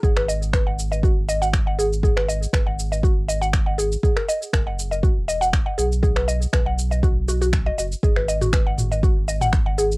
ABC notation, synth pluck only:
X:1
M:4/4
L:1/16
Q:1/4=120
K:G#m
V:1 name="Synth pluck"
G B d z B f z d F z d f z f G z | G B d z B f z d F z d f z f G z | G A d z A f z d F z d f z f G z | G B d z B f z d F z F F z d d z |
G B d F B f z d F z d f z f G z |]